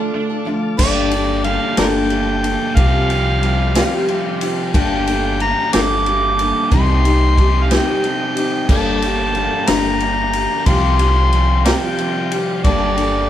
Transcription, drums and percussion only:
0, 0, Header, 1, 2, 480
1, 0, Start_track
1, 0, Key_signature, -2, "minor"
1, 0, Tempo, 658617
1, 579, Time_signature, 6, 3, 24, 8
1, 9691, End_track
2, 0, Start_track
2, 0, Title_t, "Drums"
2, 575, Note_on_c, 9, 49, 127
2, 576, Note_on_c, 9, 36, 109
2, 647, Note_off_c, 9, 49, 0
2, 648, Note_off_c, 9, 36, 0
2, 811, Note_on_c, 9, 51, 76
2, 884, Note_off_c, 9, 51, 0
2, 1051, Note_on_c, 9, 51, 74
2, 1124, Note_off_c, 9, 51, 0
2, 1291, Note_on_c, 9, 51, 105
2, 1296, Note_on_c, 9, 38, 119
2, 1364, Note_off_c, 9, 51, 0
2, 1369, Note_off_c, 9, 38, 0
2, 1532, Note_on_c, 9, 51, 75
2, 1604, Note_off_c, 9, 51, 0
2, 1778, Note_on_c, 9, 51, 74
2, 1851, Note_off_c, 9, 51, 0
2, 2017, Note_on_c, 9, 36, 106
2, 2017, Note_on_c, 9, 51, 105
2, 2090, Note_off_c, 9, 36, 0
2, 2090, Note_off_c, 9, 51, 0
2, 2258, Note_on_c, 9, 51, 71
2, 2331, Note_off_c, 9, 51, 0
2, 2498, Note_on_c, 9, 51, 74
2, 2570, Note_off_c, 9, 51, 0
2, 2735, Note_on_c, 9, 51, 105
2, 2740, Note_on_c, 9, 38, 120
2, 2808, Note_off_c, 9, 51, 0
2, 2813, Note_off_c, 9, 38, 0
2, 2976, Note_on_c, 9, 51, 72
2, 3049, Note_off_c, 9, 51, 0
2, 3214, Note_on_c, 9, 51, 82
2, 3287, Note_off_c, 9, 51, 0
2, 3457, Note_on_c, 9, 36, 116
2, 3458, Note_on_c, 9, 51, 108
2, 3530, Note_off_c, 9, 36, 0
2, 3531, Note_off_c, 9, 51, 0
2, 3698, Note_on_c, 9, 51, 79
2, 3770, Note_off_c, 9, 51, 0
2, 3936, Note_on_c, 9, 51, 80
2, 4009, Note_off_c, 9, 51, 0
2, 4176, Note_on_c, 9, 51, 114
2, 4181, Note_on_c, 9, 38, 124
2, 4249, Note_off_c, 9, 51, 0
2, 4254, Note_off_c, 9, 38, 0
2, 4417, Note_on_c, 9, 51, 75
2, 4490, Note_off_c, 9, 51, 0
2, 4656, Note_on_c, 9, 51, 79
2, 4729, Note_off_c, 9, 51, 0
2, 4894, Note_on_c, 9, 51, 101
2, 4895, Note_on_c, 9, 36, 121
2, 4967, Note_off_c, 9, 51, 0
2, 4968, Note_off_c, 9, 36, 0
2, 5138, Note_on_c, 9, 51, 74
2, 5211, Note_off_c, 9, 51, 0
2, 5376, Note_on_c, 9, 36, 83
2, 5379, Note_on_c, 9, 51, 74
2, 5449, Note_off_c, 9, 36, 0
2, 5452, Note_off_c, 9, 51, 0
2, 5617, Note_on_c, 9, 51, 104
2, 5622, Note_on_c, 9, 38, 119
2, 5690, Note_off_c, 9, 51, 0
2, 5695, Note_off_c, 9, 38, 0
2, 5857, Note_on_c, 9, 51, 69
2, 5930, Note_off_c, 9, 51, 0
2, 6097, Note_on_c, 9, 51, 72
2, 6170, Note_off_c, 9, 51, 0
2, 6333, Note_on_c, 9, 36, 112
2, 6333, Note_on_c, 9, 57, 96
2, 6406, Note_off_c, 9, 36, 0
2, 6406, Note_off_c, 9, 57, 0
2, 6576, Note_on_c, 9, 51, 73
2, 6648, Note_off_c, 9, 51, 0
2, 6812, Note_on_c, 9, 51, 72
2, 6885, Note_off_c, 9, 51, 0
2, 7050, Note_on_c, 9, 51, 112
2, 7055, Note_on_c, 9, 38, 126
2, 7123, Note_off_c, 9, 51, 0
2, 7128, Note_off_c, 9, 38, 0
2, 7291, Note_on_c, 9, 51, 77
2, 7363, Note_off_c, 9, 51, 0
2, 7531, Note_on_c, 9, 51, 82
2, 7604, Note_off_c, 9, 51, 0
2, 7770, Note_on_c, 9, 51, 104
2, 7773, Note_on_c, 9, 36, 117
2, 7843, Note_off_c, 9, 51, 0
2, 7845, Note_off_c, 9, 36, 0
2, 8011, Note_on_c, 9, 51, 76
2, 8084, Note_off_c, 9, 51, 0
2, 8253, Note_on_c, 9, 51, 78
2, 8326, Note_off_c, 9, 51, 0
2, 8493, Note_on_c, 9, 51, 113
2, 8498, Note_on_c, 9, 38, 124
2, 8566, Note_off_c, 9, 51, 0
2, 8571, Note_off_c, 9, 38, 0
2, 8734, Note_on_c, 9, 51, 74
2, 8807, Note_off_c, 9, 51, 0
2, 8975, Note_on_c, 9, 51, 86
2, 9048, Note_off_c, 9, 51, 0
2, 9215, Note_on_c, 9, 36, 118
2, 9215, Note_on_c, 9, 51, 102
2, 9288, Note_off_c, 9, 36, 0
2, 9288, Note_off_c, 9, 51, 0
2, 9456, Note_on_c, 9, 51, 75
2, 9529, Note_off_c, 9, 51, 0
2, 9691, End_track
0, 0, End_of_file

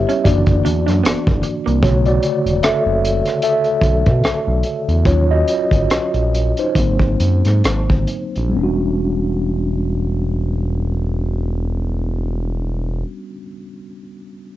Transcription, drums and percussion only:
0, 0, Header, 1, 2, 480
1, 0, Start_track
1, 0, Tempo, 794702
1, 1103, Time_signature, 4, 2, 24, 8
1, 2550, Tempo, 841515
1, 3990, Tempo, 899550
1, 4950, Tempo, 928793
1, 8062, End_track
2, 0, Start_track
2, 0, Title_t, "Drums"
2, 56, Note_on_c, 9, 42, 46
2, 117, Note_off_c, 9, 42, 0
2, 152, Note_on_c, 9, 36, 74
2, 156, Note_on_c, 9, 42, 80
2, 212, Note_off_c, 9, 36, 0
2, 216, Note_off_c, 9, 42, 0
2, 280, Note_on_c, 9, 42, 32
2, 284, Note_on_c, 9, 36, 76
2, 341, Note_off_c, 9, 42, 0
2, 344, Note_off_c, 9, 36, 0
2, 397, Note_on_c, 9, 42, 61
2, 457, Note_off_c, 9, 42, 0
2, 531, Note_on_c, 9, 42, 43
2, 542, Note_on_c, 9, 37, 32
2, 591, Note_off_c, 9, 42, 0
2, 602, Note_off_c, 9, 37, 0
2, 635, Note_on_c, 9, 42, 77
2, 642, Note_on_c, 9, 37, 95
2, 695, Note_off_c, 9, 42, 0
2, 703, Note_off_c, 9, 37, 0
2, 767, Note_on_c, 9, 36, 81
2, 828, Note_off_c, 9, 36, 0
2, 864, Note_on_c, 9, 42, 45
2, 924, Note_off_c, 9, 42, 0
2, 1012, Note_on_c, 9, 42, 32
2, 1072, Note_off_c, 9, 42, 0
2, 1104, Note_on_c, 9, 36, 90
2, 1111, Note_on_c, 9, 42, 54
2, 1165, Note_off_c, 9, 36, 0
2, 1172, Note_off_c, 9, 42, 0
2, 1242, Note_on_c, 9, 42, 29
2, 1302, Note_off_c, 9, 42, 0
2, 1345, Note_on_c, 9, 42, 55
2, 1406, Note_off_c, 9, 42, 0
2, 1490, Note_on_c, 9, 42, 46
2, 1550, Note_off_c, 9, 42, 0
2, 1589, Note_on_c, 9, 42, 69
2, 1596, Note_on_c, 9, 37, 93
2, 1650, Note_off_c, 9, 42, 0
2, 1656, Note_off_c, 9, 37, 0
2, 1841, Note_on_c, 9, 42, 61
2, 1901, Note_off_c, 9, 42, 0
2, 1966, Note_on_c, 9, 42, 41
2, 1980, Note_on_c, 9, 37, 33
2, 2027, Note_off_c, 9, 42, 0
2, 2040, Note_off_c, 9, 37, 0
2, 2067, Note_on_c, 9, 42, 71
2, 2128, Note_off_c, 9, 42, 0
2, 2200, Note_on_c, 9, 42, 26
2, 2260, Note_off_c, 9, 42, 0
2, 2304, Note_on_c, 9, 36, 75
2, 2314, Note_on_c, 9, 42, 62
2, 2364, Note_off_c, 9, 36, 0
2, 2374, Note_off_c, 9, 42, 0
2, 2452, Note_on_c, 9, 42, 44
2, 2455, Note_on_c, 9, 36, 77
2, 2463, Note_on_c, 9, 37, 29
2, 2512, Note_off_c, 9, 42, 0
2, 2515, Note_off_c, 9, 36, 0
2, 2523, Note_off_c, 9, 37, 0
2, 2558, Note_on_c, 9, 42, 76
2, 2565, Note_on_c, 9, 37, 92
2, 2615, Note_off_c, 9, 42, 0
2, 2622, Note_off_c, 9, 37, 0
2, 2784, Note_on_c, 9, 42, 44
2, 2841, Note_off_c, 9, 42, 0
2, 2929, Note_on_c, 9, 42, 32
2, 2986, Note_off_c, 9, 42, 0
2, 3023, Note_on_c, 9, 36, 90
2, 3030, Note_on_c, 9, 42, 54
2, 3080, Note_off_c, 9, 36, 0
2, 3087, Note_off_c, 9, 42, 0
2, 3265, Note_on_c, 9, 42, 57
2, 3322, Note_off_c, 9, 42, 0
2, 3400, Note_on_c, 9, 36, 66
2, 3407, Note_on_c, 9, 42, 45
2, 3457, Note_off_c, 9, 36, 0
2, 3464, Note_off_c, 9, 42, 0
2, 3508, Note_on_c, 9, 42, 64
2, 3514, Note_on_c, 9, 37, 89
2, 3565, Note_off_c, 9, 42, 0
2, 3571, Note_off_c, 9, 37, 0
2, 3644, Note_on_c, 9, 42, 31
2, 3701, Note_off_c, 9, 42, 0
2, 3761, Note_on_c, 9, 42, 54
2, 3818, Note_off_c, 9, 42, 0
2, 3889, Note_on_c, 9, 42, 43
2, 3946, Note_off_c, 9, 42, 0
2, 3993, Note_on_c, 9, 36, 66
2, 3996, Note_on_c, 9, 42, 68
2, 4047, Note_off_c, 9, 36, 0
2, 4049, Note_off_c, 9, 42, 0
2, 4122, Note_on_c, 9, 36, 69
2, 4176, Note_off_c, 9, 36, 0
2, 4232, Note_on_c, 9, 42, 62
2, 4285, Note_off_c, 9, 42, 0
2, 4364, Note_on_c, 9, 42, 39
2, 4374, Note_on_c, 9, 37, 28
2, 4418, Note_off_c, 9, 42, 0
2, 4427, Note_off_c, 9, 37, 0
2, 4467, Note_on_c, 9, 42, 66
2, 4474, Note_on_c, 9, 37, 82
2, 4521, Note_off_c, 9, 42, 0
2, 4527, Note_off_c, 9, 37, 0
2, 4604, Note_on_c, 9, 36, 72
2, 4657, Note_off_c, 9, 36, 0
2, 4697, Note_on_c, 9, 42, 47
2, 4751, Note_off_c, 9, 42, 0
2, 4848, Note_on_c, 9, 42, 32
2, 4902, Note_off_c, 9, 42, 0
2, 8062, End_track
0, 0, End_of_file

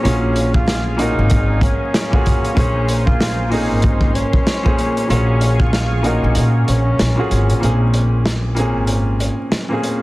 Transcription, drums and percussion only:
0, 0, Header, 1, 2, 480
1, 0, Start_track
1, 0, Key_signature, -5, "minor"
1, 0, Tempo, 631579
1, 32, Time_signature, 4, 2, 24, 8
1, 7616, End_track
2, 0, Start_track
2, 0, Title_t, "Drums"
2, 39, Note_on_c, 9, 42, 84
2, 115, Note_off_c, 9, 42, 0
2, 272, Note_on_c, 9, 42, 78
2, 348, Note_off_c, 9, 42, 0
2, 413, Note_on_c, 9, 36, 92
2, 489, Note_off_c, 9, 36, 0
2, 514, Note_on_c, 9, 38, 119
2, 523, Note_on_c, 9, 42, 92
2, 590, Note_off_c, 9, 38, 0
2, 599, Note_off_c, 9, 42, 0
2, 751, Note_on_c, 9, 42, 74
2, 827, Note_off_c, 9, 42, 0
2, 985, Note_on_c, 9, 42, 92
2, 997, Note_on_c, 9, 36, 93
2, 1061, Note_off_c, 9, 42, 0
2, 1073, Note_off_c, 9, 36, 0
2, 1226, Note_on_c, 9, 36, 94
2, 1237, Note_on_c, 9, 42, 79
2, 1302, Note_off_c, 9, 36, 0
2, 1313, Note_off_c, 9, 42, 0
2, 1476, Note_on_c, 9, 38, 116
2, 1477, Note_on_c, 9, 42, 98
2, 1552, Note_off_c, 9, 38, 0
2, 1553, Note_off_c, 9, 42, 0
2, 1620, Note_on_c, 9, 36, 100
2, 1696, Note_off_c, 9, 36, 0
2, 1717, Note_on_c, 9, 42, 75
2, 1724, Note_on_c, 9, 36, 88
2, 1793, Note_off_c, 9, 42, 0
2, 1800, Note_off_c, 9, 36, 0
2, 1859, Note_on_c, 9, 42, 54
2, 1935, Note_off_c, 9, 42, 0
2, 1952, Note_on_c, 9, 36, 116
2, 1960, Note_on_c, 9, 42, 80
2, 2028, Note_off_c, 9, 36, 0
2, 2036, Note_off_c, 9, 42, 0
2, 2193, Note_on_c, 9, 42, 78
2, 2269, Note_off_c, 9, 42, 0
2, 2334, Note_on_c, 9, 36, 94
2, 2410, Note_off_c, 9, 36, 0
2, 2435, Note_on_c, 9, 38, 121
2, 2444, Note_on_c, 9, 42, 93
2, 2511, Note_off_c, 9, 38, 0
2, 2520, Note_off_c, 9, 42, 0
2, 2672, Note_on_c, 9, 46, 51
2, 2748, Note_off_c, 9, 46, 0
2, 2905, Note_on_c, 9, 42, 91
2, 2917, Note_on_c, 9, 36, 94
2, 2981, Note_off_c, 9, 42, 0
2, 2993, Note_off_c, 9, 36, 0
2, 3046, Note_on_c, 9, 36, 93
2, 3122, Note_off_c, 9, 36, 0
2, 3156, Note_on_c, 9, 42, 76
2, 3232, Note_off_c, 9, 42, 0
2, 3294, Note_on_c, 9, 36, 92
2, 3370, Note_off_c, 9, 36, 0
2, 3395, Note_on_c, 9, 38, 116
2, 3396, Note_on_c, 9, 42, 98
2, 3471, Note_off_c, 9, 38, 0
2, 3472, Note_off_c, 9, 42, 0
2, 3539, Note_on_c, 9, 36, 100
2, 3615, Note_off_c, 9, 36, 0
2, 3637, Note_on_c, 9, 42, 77
2, 3713, Note_off_c, 9, 42, 0
2, 3778, Note_on_c, 9, 42, 52
2, 3854, Note_off_c, 9, 42, 0
2, 3879, Note_on_c, 9, 42, 82
2, 3955, Note_off_c, 9, 42, 0
2, 4112, Note_on_c, 9, 42, 77
2, 4188, Note_off_c, 9, 42, 0
2, 4254, Note_on_c, 9, 36, 91
2, 4330, Note_off_c, 9, 36, 0
2, 4355, Note_on_c, 9, 38, 121
2, 4363, Note_on_c, 9, 42, 92
2, 4431, Note_off_c, 9, 38, 0
2, 4439, Note_off_c, 9, 42, 0
2, 4591, Note_on_c, 9, 42, 74
2, 4667, Note_off_c, 9, 42, 0
2, 4826, Note_on_c, 9, 42, 94
2, 4902, Note_off_c, 9, 42, 0
2, 5076, Note_on_c, 9, 42, 78
2, 5152, Note_off_c, 9, 42, 0
2, 5315, Note_on_c, 9, 38, 125
2, 5316, Note_on_c, 9, 42, 97
2, 5391, Note_off_c, 9, 38, 0
2, 5392, Note_off_c, 9, 42, 0
2, 5556, Note_on_c, 9, 42, 76
2, 5632, Note_off_c, 9, 42, 0
2, 5697, Note_on_c, 9, 42, 55
2, 5773, Note_off_c, 9, 42, 0
2, 5799, Note_on_c, 9, 42, 78
2, 5875, Note_off_c, 9, 42, 0
2, 6032, Note_on_c, 9, 42, 77
2, 6108, Note_off_c, 9, 42, 0
2, 6274, Note_on_c, 9, 38, 118
2, 6282, Note_on_c, 9, 42, 85
2, 6350, Note_off_c, 9, 38, 0
2, 6358, Note_off_c, 9, 42, 0
2, 6510, Note_on_c, 9, 42, 69
2, 6586, Note_off_c, 9, 42, 0
2, 6744, Note_on_c, 9, 42, 86
2, 6820, Note_off_c, 9, 42, 0
2, 6994, Note_on_c, 9, 42, 72
2, 7070, Note_off_c, 9, 42, 0
2, 7233, Note_on_c, 9, 38, 119
2, 7234, Note_on_c, 9, 42, 94
2, 7309, Note_off_c, 9, 38, 0
2, 7310, Note_off_c, 9, 42, 0
2, 7474, Note_on_c, 9, 42, 74
2, 7550, Note_off_c, 9, 42, 0
2, 7616, End_track
0, 0, End_of_file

